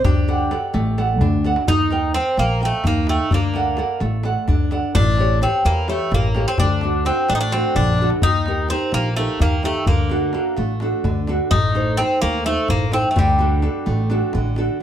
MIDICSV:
0, 0, Header, 1, 5, 480
1, 0, Start_track
1, 0, Tempo, 468750
1, 46, Time_signature, 7, 3, 24, 8
1, 15184, End_track
2, 0, Start_track
2, 0, Title_t, "Nylon-string guitar"
2, 0, Program_c, 0, 24
2, 52, Note_on_c, 0, 62, 68
2, 285, Note_on_c, 0, 69, 45
2, 289, Note_on_c, 0, 74, 42
2, 292, Note_on_c, 0, 78, 47
2, 509, Note_off_c, 0, 69, 0
2, 513, Note_off_c, 0, 62, 0
2, 513, Note_off_c, 0, 74, 0
2, 519, Note_off_c, 0, 78, 0
2, 521, Note_on_c, 0, 69, 50
2, 525, Note_on_c, 0, 74, 45
2, 532, Note_on_c, 0, 78, 49
2, 754, Note_on_c, 0, 57, 68
2, 905, Note_off_c, 0, 69, 0
2, 908, Note_off_c, 0, 74, 0
2, 911, Note_off_c, 0, 78, 0
2, 1001, Note_on_c, 0, 69, 50
2, 1005, Note_on_c, 0, 74, 43
2, 1010, Note_on_c, 0, 78, 52
2, 1222, Note_off_c, 0, 57, 0
2, 1242, Note_on_c, 0, 62, 64
2, 1384, Note_off_c, 0, 69, 0
2, 1387, Note_off_c, 0, 74, 0
2, 1390, Note_off_c, 0, 78, 0
2, 1483, Note_on_c, 0, 69, 51
2, 1489, Note_on_c, 0, 74, 46
2, 1497, Note_on_c, 0, 78, 55
2, 1674, Note_off_c, 0, 69, 0
2, 1677, Note_off_c, 0, 74, 0
2, 1682, Note_off_c, 0, 78, 0
2, 1706, Note_off_c, 0, 62, 0
2, 1722, Note_on_c, 0, 63, 61
2, 1959, Note_on_c, 0, 70, 47
2, 1963, Note_on_c, 0, 75, 40
2, 1968, Note_on_c, 0, 79, 48
2, 2186, Note_off_c, 0, 63, 0
2, 2191, Note_off_c, 0, 70, 0
2, 2193, Note_off_c, 0, 75, 0
2, 2200, Note_off_c, 0, 79, 0
2, 2203, Note_on_c, 0, 70, 46
2, 2208, Note_on_c, 0, 75, 39
2, 2212, Note_on_c, 0, 79, 50
2, 2443, Note_on_c, 0, 58, 65
2, 2585, Note_off_c, 0, 70, 0
2, 2586, Note_off_c, 0, 75, 0
2, 2590, Note_off_c, 0, 79, 0
2, 2678, Note_on_c, 0, 70, 46
2, 2683, Note_on_c, 0, 75, 42
2, 2689, Note_on_c, 0, 79, 56
2, 2905, Note_off_c, 0, 58, 0
2, 2925, Note_on_c, 0, 63, 62
2, 3061, Note_off_c, 0, 70, 0
2, 3063, Note_off_c, 0, 75, 0
2, 3068, Note_off_c, 0, 79, 0
2, 3163, Note_on_c, 0, 70, 51
2, 3165, Note_on_c, 0, 75, 46
2, 3167, Note_on_c, 0, 79, 55
2, 3352, Note_off_c, 0, 75, 0
2, 3353, Note_off_c, 0, 70, 0
2, 3355, Note_off_c, 0, 79, 0
2, 3386, Note_off_c, 0, 63, 0
2, 3400, Note_on_c, 0, 62, 64
2, 3631, Note_on_c, 0, 69, 46
2, 3635, Note_on_c, 0, 74, 41
2, 3642, Note_on_c, 0, 78, 53
2, 3855, Note_off_c, 0, 69, 0
2, 3861, Note_off_c, 0, 74, 0
2, 3863, Note_off_c, 0, 62, 0
2, 3865, Note_off_c, 0, 78, 0
2, 3867, Note_on_c, 0, 69, 48
2, 3873, Note_on_c, 0, 74, 44
2, 3878, Note_on_c, 0, 78, 52
2, 4106, Note_on_c, 0, 57, 62
2, 4254, Note_off_c, 0, 69, 0
2, 4257, Note_off_c, 0, 74, 0
2, 4260, Note_off_c, 0, 78, 0
2, 4342, Note_on_c, 0, 69, 51
2, 4349, Note_on_c, 0, 74, 41
2, 4354, Note_on_c, 0, 78, 54
2, 4575, Note_off_c, 0, 57, 0
2, 4592, Note_on_c, 0, 62, 60
2, 4730, Note_off_c, 0, 69, 0
2, 4735, Note_off_c, 0, 74, 0
2, 4736, Note_off_c, 0, 78, 0
2, 4828, Note_on_c, 0, 69, 52
2, 4834, Note_on_c, 0, 74, 44
2, 4836, Note_on_c, 0, 78, 54
2, 5022, Note_off_c, 0, 69, 0
2, 5023, Note_off_c, 0, 74, 0
2, 5026, Note_off_c, 0, 78, 0
2, 5058, Note_off_c, 0, 62, 0
2, 5072, Note_on_c, 0, 57, 70
2, 5316, Note_on_c, 0, 67, 46
2, 5322, Note_on_c, 0, 69, 38
2, 5327, Note_on_c, 0, 73, 55
2, 5530, Note_off_c, 0, 67, 0
2, 5535, Note_off_c, 0, 69, 0
2, 5537, Note_off_c, 0, 57, 0
2, 5542, Note_off_c, 0, 73, 0
2, 5543, Note_on_c, 0, 67, 48
2, 5547, Note_on_c, 0, 69, 44
2, 5555, Note_on_c, 0, 73, 54
2, 5784, Note_on_c, 0, 52, 70
2, 5930, Note_off_c, 0, 67, 0
2, 5933, Note_off_c, 0, 69, 0
2, 5937, Note_off_c, 0, 73, 0
2, 6024, Note_on_c, 0, 67, 48
2, 6029, Note_on_c, 0, 69, 41
2, 6034, Note_on_c, 0, 73, 53
2, 6244, Note_off_c, 0, 69, 0
2, 6253, Note_off_c, 0, 52, 0
2, 6256, Note_on_c, 0, 69, 58
2, 6410, Note_off_c, 0, 67, 0
2, 6416, Note_off_c, 0, 73, 0
2, 6497, Note_off_c, 0, 69, 0
2, 6506, Note_on_c, 0, 67, 49
2, 6510, Note_on_c, 0, 69, 49
2, 6510, Note_on_c, 0, 73, 54
2, 6700, Note_off_c, 0, 67, 0
2, 6702, Note_off_c, 0, 69, 0
2, 6702, Note_off_c, 0, 73, 0
2, 6760, Note_on_c, 0, 50, 65
2, 6991, Note_on_c, 0, 62, 44
2, 6999, Note_on_c, 0, 66, 42
2, 7004, Note_on_c, 0, 69, 50
2, 7218, Note_off_c, 0, 62, 0
2, 7221, Note_off_c, 0, 50, 0
2, 7222, Note_off_c, 0, 66, 0
2, 7230, Note_on_c, 0, 62, 46
2, 7232, Note_off_c, 0, 69, 0
2, 7237, Note_on_c, 0, 66, 44
2, 7245, Note_on_c, 0, 69, 54
2, 7480, Note_on_c, 0, 57, 65
2, 7614, Note_off_c, 0, 62, 0
2, 7617, Note_off_c, 0, 66, 0
2, 7623, Note_off_c, 0, 69, 0
2, 7709, Note_on_c, 0, 62, 44
2, 7715, Note_on_c, 0, 66, 44
2, 7719, Note_on_c, 0, 69, 49
2, 7940, Note_off_c, 0, 57, 0
2, 7958, Note_on_c, 0, 50, 58
2, 8094, Note_off_c, 0, 62, 0
2, 8096, Note_off_c, 0, 66, 0
2, 8100, Note_off_c, 0, 69, 0
2, 8201, Note_on_c, 0, 62, 47
2, 8208, Note_on_c, 0, 66, 42
2, 8213, Note_on_c, 0, 69, 49
2, 8389, Note_off_c, 0, 62, 0
2, 8391, Note_off_c, 0, 66, 0
2, 8396, Note_off_c, 0, 69, 0
2, 8420, Note_off_c, 0, 50, 0
2, 8438, Note_on_c, 0, 51, 63
2, 8676, Note_on_c, 0, 63, 45
2, 8681, Note_on_c, 0, 67, 40
2, 8685, Note_on_c, 0, 70, 49
2, 8900, Note_off_c, 0, 51, 0
2, 8905, Note_off_c, 0, 63, 0
2, 8907, Note_off_c, 0, 67, 0
2, 8913, Note_off_c, 0, 70, 0
2, 8917, Note_on_c, 0, 63, 46
2, 8922, Note_on_c, 0, 67, 44
2, 8926, Note_on_c, 0, 70, 50
2, 9151, Note_on_c, 0, 58, 67
2, 9299, Note_off_c, 0, 63, 0
2, 9300, Note_off_c, 0, 67, 0
2, 9304, Note_off_c, 0, 70, 0
2, 9391, Note_on_c, 0, 63, 47
2, 9399, Note_on_c, 0, 67, 44
2, 9400, Note_on_c, 0, 70, 56
2, 9616, Note_off_c, 0, 58, 0
2, 9635, Note_on_c, 0, 51, 57
2, 9775, Note_off_c, 0, 63, 0
2, 9780, Note_off_c, 0, 67, 0
2, 9780, Note_off_c, 0, 70, 0
2, 9868, Note_on_c, 0, 63, 46
2, 9873, Note_on_c, 0, 67, 43
2, 9879, Note_on_c, 0, 70, 55
2, 10061, Note_off_c, 0, 63, 0
2, 10064, Note_off_c, 0, 67, 0
2, 10066, Note_off_c, 0, 70, 0
2, 10099, Note_off_c, 0, 51, 0
2, 10117, Note_on_c, 0, 50, 68
2, 10348, Note_on_c, 0, 62, 43
2, 10355, Note_on_c, 0, 66, 41
2, 10355, Note_on_c, 0, 69, 51
2, 10573, Note_off_c, 0, 62, 0
2, 10577, Note_off_c, 0, 69, 0
2, 10578, Note_off_c, 0, 66, 0
2, 10580, Note_off_c, 0, 50, 0
2, 10584, Note_on_c, 0, 62, 43
2, 10590, Note_on_c, 0, 66, 44
2, 10591, Note_on_c, 0, 69, 53
2, 10826, Note_on_c, 0, 57, 61
2, 10972, Note_off_c, 0, 62, 0
2, 10975, Note_off_c, 0, 66, 0
2, 10975, Note_off_c, 0, 69, 0
2, 11075, Note_on_c, 0, 62, 46
2, 11080, Note_on_c, 0, 66, 42
2, 11084, Note_on_c, 0, 69, 52
2, 11295, Note_off_c, 0, 57, 0
2, 11315, Note_on_c, 0, 50, 59
2, 11459, Note_off_c, 0, 62, 0
2, 11459, Note_off_c, 0, 66, 0
2, 11464, Note_off_c, 0, 69, 0
2, 11550, Note_on_c, 0, 62, 53
2, 11557, Note_on_c, 0, 66, 44
2, 11562, Note_on_c, 0, 69, 53
2, 11744, Note_off_c, 0, 62, 0
2, 11748, Note_off_c, 0, 66, 0
2, 11751, Note_off_c, 0, 69, 0
2, 11780, Note_off_c, 0, 50, 0
2, 11803, Note_on_c, 0, 57, 63
2, 12032, Note_on_c, 0, 63, 45
2, 12035, Note_on_c, 0, 69, 40
2, 12043, Note_on_c, 0, 72, 50
2, 12263, Note_off_c, 0, 63, 0
2, 12265, Note_off_c, 0, 57, 0
2, 12270, Note_off_c, 0, 69, 0
2, 12276, Note_off_c, 0, 72, 0
2, 12276, Note_on_c, 0, 63, 50
2, 12283, Note_on_c, 0, 69, 44
2, 12288, Note_on_c, 0, 72, 52
2, 12513, Note_on_c, 0, 57, 66
2, 12660, Note_off_c, 0, 63, 0
2, 12665, Note_off_c, 0, 69, 0
2, 12668, Note_off_c, 0, 72, 0
2, 12757, Note_on_c, 0, 63, 48
2, 12761, Note_on_c, 0, 69, 46
2, 12766, Note_on_c, 0, 72, 52
2, 12981, Note_off_c, 0, 57, 0
2, 13002, Note_on_c, 0, 57, 60
2, 13142, Note_off_c, 0, 63, 0
2, 13144, Note_off_c, 0, 69, 0
2, 13148, Note_off_c, 0, 72, 0
2, 13230, Note_on_c, 0, 63, 50
2, 13238, Note_on_c, 0, 69, 42
2, 13243, Note_on_c, 0, 72, 54
2, 13426, Note_off_c, 0, 63, 0
2, 13431, Note_off_c, 0, 69, 0
2, 13434, Note_off_c, 0, 72, 0
2, 13467, Note_off_c, 0, 57, 0
2, 13473, Note_on_c, 0, 50, 66
2, 13714, Note_on_c, 0, 62, 45
2, 13719, Note_on_c, 0, 66, 43
2, 13726, Note_on_c, 0, 69, 49
2, 13940, Note_off_c, 0, 62, 0
2, 13941, Note_off_c, 0, 69, 0
2, 13942, Note_off_c, 0, 66, 0
2, 13944, Note_off_c, 0, 50, 0
2, 13950, Note_on_c, 0, 62, 48
2, 13956, Note_on_c, 0, 66, 42
2, 13958, Note_on_c, 0, 69, 53
2, 14195, Note_on_c, 0, 57, 67
2, 14342, Note_off_c, 0, 62, 0
2, 14343, Note_off_c, 0, 66, 0
2, 14343, Note_off_c, 0, 69, 0
2, 14441, Note_on_c, 0, 62, 50
2, 14448, Note_on_c, 0, 66, 43
2, 14452, Note_on_c, 0, 69, 55
2, 14667, Note_off_c, 0, 57, 0
2, 14690, Note_on_c, 0, 50, 61
2, 14828, Note_off_c, 0, 62, 0
2, 14834, Note_off_c, 0, 66, 0
2, 14834, Note_off_c, 0, 69, 0
2, 14926, Note_on_c, 0, 62, 49
2, 14932, Note_on_c, 0, 66, 45
2, 14935, Note_on_c, 0, 69, 52
2, 15120, Note_off_c, 0, 62, 0
2, 15124, Note_off_c, 0, 66, 0
2, 15124, Note_off_c, 0, 69, 0
2, 15156, Note_off_c, 0, 50, 0
2, 15184, End_track
3, 0, Start_track
3, 0, Title_t, "Bouzouki"
3, 0, Program_c, 1, 25
3, 45, Note_on_c, 1, 67, 67
3, 1440, Note_off_c, 1, 67, 0
3, 1723, Note_on_c, 1, 63, 90
3, 2191, Note_off_c, 1, 63, 0
3, 2195, Note_on_c, 1, 60, 86
3, 2420, Note_off_c, 1, 60, 0
3, 2450, Note_on_c, 1, 58, 82
3, 2667, Note_off_c, 1, 58, 0
3, 2715, Note_on_c, 1, 57, 75
3, 2933, Note_off_c, 1, 57, 0
3, 2937, Note_on_c, 1, 58, 81
3, 3163, Note_off_c, 1, 58, 0
3, 3168, Note_on_c, 1, 57, 75
3, 3408, Note_off_c, 1, 57, 0
3, 3422, Note_on_c, 1, 58, 76
3, 4086, Note_off_c, 1, 58, 0
3, 5068, Note_on_c, 1, 62, 94
3, 5516, Note_off_c, 1, 62, 0
3, 5558, Note_on_c, 1, 60, 74
3, 5778, Note_off_c, 1, 60, 0
3, 5793, Note_on_c, 1, 58, 88
3, 6033, Note_off_c, 1, 58, 0
3, 6037, Note_on_c, 1, 57, 73
3, 6281, Note_off_c, 1, 57, 0
3, 6291, Note_on_c, 1, 58, 75
3, 6629, Note_off_c, 1, 58, 0
3, 6633, Note_on_c, 1, 60, 81
3, 6750, Note_off_c, 1, 60, 0
3, 6754, Note_on_c, 1, 62, 94
3, 7225, Note_off_c, 1, 62, 0
3, 7229, Note_on_c, 1, 60, 77
3, 7453, Note_off_c, 1, 60, 0
3, 7470, Note_on_c, 1, 62, 90
3, 7522, Note_off_c, 1, 62, 0
3, 7526, Note_on_c, 1, 63, 82
3, 7580, Note_off_c, 1, 63, 0
3, 7584, Note_on_c, 1, 62, 100
3, 7698, Note_off_c, 1, 62, 0
3, 7704, Note_on_c, 1, 60, 81
3, 7930, Note_off_c, 1, 60, 0
3, 7945, Note_on_c, 1, 62, 91
3, 8282, Note_off_c, 1, 62, 0
3, 8429, Note_on_c, 1, 63, 100
3, 8876, Note_off_c, 1, 63, 0
3, 8909, Note_on_c, 1, 60, 84
3, 9133, Note_off_c, 1, 60, 0
3, 9155, Note_on_c, 1, 58, 91
3, 9376, Note_off_c, 1, 58, 0
3, 9385, Note_on_c, 1, 57, 81
3, 9611, Note_off_c, 1, 57, 0
3, 9642, Note_on_c, 1, 58, 86
3, 9879, Note_off_c, 1, 58, 0
3, 9883, Note_on_c, 1, 57, 84
3, 10101, Note_off_c, 1, 57, 0
3, 10110, Note_on_c, 1, 58, 72
3, 10790, Note_off_c, 1, 58, 0
3, 11784, Note_on_c, 1, 63, 93
3, 12261, Note_on_c, 1, 60, 92
3, 12285, Note_off_c, 1, 63, 0
3, 12491, Note_off_c, 1, 60, 0
3, 12508, Note_on_c, 1, 58, 97
3, 12736, Note_off_c, 1, 58, 0
3, 12757, Note_on_c, 1, 57, 88
3, 12981, Note_off_c, 1, 57, 0
3, 13005, Note_on_c, 1, 58, 91
3, 13225, Note_off_c, 1, 58, 0
3, 13245, Note_on_c, 1, 60, 81
3, 13399, Note_off_c, 1, 60, 0
3, 13422, Note_on_c, 1, 57, 59
3, 13486, Note_off_c, 1, 57, 0
3, 13502, Note_on_c, 1, 55, 69
3, 14898, Note_off_c, 1, 55, 0
3, 15184, End_track
4, 0, Start_track
4, 0, Title_t, "Upright bass"
4, 0, Program_c, 2, 32
4, 44, Note_on_c, 2, 38, 89
4, 547, Note_off_c, 2, 38, 0
4, 761, Note_on_c, 2, 33, 84
4, 1245, Note_off_c, 2, 33, 0
4, 1245, Note_on_c, 2, 38, 94
4, 1579, Note_off_c, 2, 38, 0
4, 1721, Note_on_c, 2, 39, 82
4, 2223, Note_off_c, 2, 39, 0
4, 2434, Note_on_c, 2, 34, 82
4, 2771, Note_off_c, 2, 34, 0
4, 2916, Note_on_c, 2, 39, 95
4, 3251, Note_off_c, 2, 39, 0
4, 3390, Note_on_c, 2, 38, 86
4, 3895, Note_off_c, 2, 38, 0
4, 4105, Note_on_c, 2, 33, 84
4, 4444, Note_off_c, 2, 33, 0
4, 4587, Note_on_c, 2, 38, 87
4, 4925, Note_off_c, 2, 38, 0
4, 5069, Note_on_c, 2, 33, 96
4, 5573, Note_off_c, 2, 33, 0
4, 5786, Note_on_c, 2, 40, 84
4, 6124, Note_off_c, 2, 40, 0
4, 6265, Note_on_c, 2, 33, 90
4, 6603, Note_off_c, 2, 33, 0
4, 6755, Note_on_c, 2, 38, 87
4, 7257, Note_off_c, 2, 38, 0
4, 7470, Note_on_c, 2, 33, 86
4, 7806, Note_off_c, 2, 33, 0
4, 7947, Note_on_c, 2, 34, 96
4, 8284, Note_off_c, 2, 34, 0
4, 8418, Note_on_c, 2, 39, 84
4, 8926, Note_off_c, 2, 39, 0
4, 9141, Note_on_c, 2, 34, 81
4, 9480, Note_off_c, 2, 34, 0
4, 9626, Note_on_c, 2, 39, 83
4, 9964, Note_off_c, 2, 39, 0
4, 10102, Note_on_c, 2, 38, 86
4, 10610, Note_off_c, 2, 38, 0
4, 10834, Note_on_c, 2, 33, 78
4, 11170, Note_off_c, 2, 33, 0
4, 11307, Note_on_c, 2, 38, 92
4, 11646, Note_off_c, 2, 38, 0
4, 11789, Note_on_c, 2, 33, 83
4, 12296, Note_off_c, 2, 33, 0
4, 12519, Note_on_c, 2, 39, 85
4, 12855, Note_off_c, 2, 39, 0
4, 13001, Note_on_c, 2, 33, 87
4, 13337, Note_off_c, 2, 33, 0
4, 13486, Note_on_c, 2, 38, 86
4, 13990, Note_off_c, 2, 38, 0
4, 14200, Note_on_c, 2, 33, 84
4, 14539, Note_off_c, 2, 33, 0
4, 14691, Note_on_c, 2, 33, 86
4, 15027, Note_off_c, 2, 33, 0
4, 15184, End_track
5, 0, Start_track
5, 0, Title_t, "Darbuka"
5, 47, Note_on_c, 9, 64, 107
5, 149, Note_off_c, 9, 64, 0
5, 295, Note_on_c, 9, 63, 71
5, 397, Note_off_c, 9, 63, 0
5, 407, Note_on_c, 9, 63, 30
5, 510, Note_off_c, 9, 63, 0
5, 524, Note_on_c, 9, 63, 75
5, 626, Note_off_c, 9, 63, 0
5, 641, Note_on_c, 9, 63, 30
5, 743, Note_off_c, 9, 63, 0
5, 760, Note_on_c, 9, 63, 73
5, 863, Note_off_c, 9, 63, 0
5, 883, Note_on_c, 9, 63, 30
5, 985, Note_off_c, 9, 63, 0
5, 1006, Note_on_c, 9, 63, 70
5, 1108, Note_off_c, 9, 63, 0
5, 1239, Note_on_c, 9, 63, 77
5, 1239, Note_on_c, 9, 64, 74
5, 1341, Note_off_c, 9, 63, 0
5, 1341, Note_off_c, 9, 64, 0
5, 1363, Note_on_c, 9, 64, 52
5, 1465, Note_off_c, 9, 64, 0
5, 1480, Note_on_c, 9, 63, 60
5, 1582, Note_off_c, 9, 63, 0
5, 1600, Note_on_c, 9, 63, 71
5, 1702, Note_off_c, 9, 63, 0
5, 1716, Note_on_c, 9, 64, 87
5, 1819, Note_off_c, 9, 64, 0
5, 1952, Note_on_c, 9, 63, 65
5, 2054, Note_off_c, 9, 63, 0
5, 2432, Note_on_c, 9, 63, 62
5, 2534, Note_off_c, 9, 63, 0
5, 2669, Note_on_c, 9, 63, 60
5, 2771, Note_off_c, 9, 63, 0
5, 2905, Note_on_c, 9, 63, 68
5, 2905, Note_on_c, 9, 64, 61
5, 3008, Note_off_c, 9, 63, 0
5, 3008, Note_off_c, 9, 64, 0
5, 3142, Note_on_c, 9, 63, 68
5, 3245, Note_off_c, 9, 63, 0
5, 3388, Note_on_c, 9, 64, 86
5, 3490, Note_off_c, 9, 64, 0
5, 3622, Note_on_c, 9, 63, 64
5, 3724, Note_off_c, 9, 63, 0
5, 3859, Note_on_c, 9, 63, 71
5, 3961, Note_off_c, 9, 63, 0
5, 4100, Note_on_c, 9, 63, 68
5, 4203, Note_off_c, 9, 63, 0
5, 4337, Note_on_c, 9, 63, 71
5, 4439, Note_off_c, 9, 63, 0
5, 4584, Note_on_c, 9, 63, 70
5, 4584, Note_on_c, 9, 64, 71
5, 4686, Note_off_c, 9, 63, 0
5, 4686, Note_off_c, 9, 64, 0
5, 4823, Note_on_c, 9, 63, 71
5, 4926, Note_off_c, 9, 63, 0
5, 5068, Note_on_c, 9, 64, 101
5, 5171, Note_off_c, 9, 64, 0
5, 5303, Note_on_c, 9, 63, 69
5, 5405, Note_off_c, 9, 63, 0
5, 5550, Note_on_c, 9, 63, 73
5, 5653, Note_off_c, 9, 63, 0
5, 5791, Note_on_c, 9, 63, 70
5, 5893, Note_off_c, 9, 63, 0
5, 6021, Note_on_c, 9, 63, 71
5, 6123, Note_off_c, 9, 63, 0
5, 6265, Note_on_c, 9, 63, 75
5, 6265, Note_on_c, 9, 64, 66
5, 6367, Note_off_c, 9, 63, 0
5, 6367, Note_off_c, 9, 64, 0
5, 6499, Note_on_c, 9, 63, 73
5, 6602, Note_off_c, 9, 63, 0
5, 6737, Note_on_c, 9, 64, 100
5, 6839, Note_off_c, 9, 64, 0
5, 6860, Note_on_c, 9, 63, 29
5, 6962, Note_off_c, 9, 63, 0
5, 6976, Note_on_c, 9, 63, 73
5, 7078, Note_off_c, 9, 63, 0
5, 7103, Note_on_c, 9, 63, 26
5, 7206, Note_off_c, 9, 63, 0
5, 7222, Note_on_c, 9, 63, 69
5, 7324, Note_off_c, 9, 63, 0
5, 7461, Note_on_c, 9, 63, 75
5, 7563, Note_off_c, 9, 63, 0
5, 7583, Note_on_c, 9, 63, 28
5, 7685, Note_off_c, 9, 63, 0
5, 7702, Note_on_c, 9, 63, 68
5, 7804, Note_off_c, 9, 63, 0
5, 7821, Note_on_c, 9, 63, 26
5, 7923, Note_off_c, 9, 63, 0
5, 7935, Note_on_c, 9, 64, 55
5, 8037, Note_off_c, 9, 64, 0
5, 8052, Note_on_c, 9, 64, 54
5, 8154, Note_off_c, 9, 64, 0
5, 8173, Note_on_c, 9, 63, 63
5, 8276, Note_off_c, 9, 63, 0
5, 8296, Note_on_c, 9, 63, 68
5, 8398, Note_off_c, 9, 63, 0
5, 8416, Note_on_c, 9, 64, 85
5, 8518, Note_off_c, 9, 64, 0
5, 8661, Note_on_c, 9, 63, 65
5, 8763, Note_off_c, 9, 63, 0
5, 8895, Note_on_c, 9, 63, 65
5, 8998, Note_off_c, 9, 63, 0
5, 9134, Note_on_c, 9, 63, 63
5, 9236, Note_off_c, 9, 63, 0
5, 9382, Note_on_c, 9, 63, 60
5, 9485, Note_off_c, 9, 63, 0
5, 9621, Note_on_c, 9, 63, 61
5, 9621, Note_on_c, 9, 64, 54
5, 9723, Note_off_c, 9, 63, 0
5, 9723, Note_off_c, 9, 64, 0
5, 9861, Note_on_c, 9, 63, 55
5, 9963, Note_off_c, 9, 63, 0
5, 10101, Note_on_c, 9, 64, 76
5, 10203, Note_off_c, 9, 64, 0
5, 10339, Note_on_c, 9, 63, 56
5, 10441, Note_off_c, 9, 63, 0
5, 10576, Note_on_c, 9, 63, 60
5, 10679, Note_off_c, 9, 63, 0
5, 10820, Note_on_c, 9, 63, 58
5, 10922, Note_off_c, 9, 63, 0
5, 11060, Note_on_c, 9, 63, 64
5, 11163, Note_off_c, 9, 63, 0
5, 11308, Note_on_c, 9, 63, 64
5, 11308, Note_on_c, 9, 64, 61
5, 11410, Note_off_c, 9, 63, 0
5, 11410, Note_off_c, 9, 64, 0
5, 11545, Note_on_c, 9, 63, 61
5, 11648, Note_off_c, 9, 63, 0
5, 11789, Note_on_c, 9, 64, 93
5, 11891, Note_off_c, 9, 64, 0
5, 12032, Note_on_c, 9, 63, 64
5, 12134, Note_off_c, 9, 63, 0
5, 12271, Note_on_c, 9, 63, 64
5, 12374, Note_off_c, 9, 63, 0
5, 12511, Note_on_c, 9, 63, 66
5, 12613, Note_off_c, 9, 63, 0
5, 12743, Note_on_c, 9, 63, 62
5, 12846, Note_off_c, 9, 63, 0
5, 12988, Note_on_c, 9, 63, 66
5, 12988, Note_on_c, 9, 64, 63
5, 13091, Note_off_c, 9, 63, 0
5, 13091, Note_off_c, 9, 64, 0
5, 13228, Note_on_c, 9, 63, 66
5, 13331, Note_off_c, 9, 63, 0
5, 13479, Note_on_c, 9, 64, 89
5, 13581, Note_off_c, 9, 64, 0
5, 13593, Note_on_c, 9, 63, 25
5, 13695, Note_off_c, 9, 63, 0
5, 13709, Note_on_c, 9, 63, 65
5, 13812, Note_off_c, 9, 63, 0
5, 13951, Note_on_c, 9, 63, 63
5, 14054, Note_off_c, 9, 63, 0
5, 14194, Note_on_c, 9, 63, 65
5, 14296, Note_off_c, 9, 63, 0
5, 14315, Note_on_c, 9, 63, 26
5, 14417, Note_off_c, 9, 63, 0
5, 14436, Note_on_c, 9, 63, 65
5, 14539, Note_off_c, 9, 63, 0
5, 14551, Note_on_c, 9, 63, 24
5, 14654, Note_off_c, 9, 63, 0
5, 14675, Note_on_c, 9, 63, 67
5, 14777, Note_off_c, 9, 63, 0
5, 14796, Note_on_c, 9, 63, 25
5, 14898, Note_off_c, 9, 63, 0
5, 14913, Note_on_c, 9, 63, 64
5, 15015, Note_off_c, 9, 63, 0
5, 15184, End_track
0, 0, End_of_file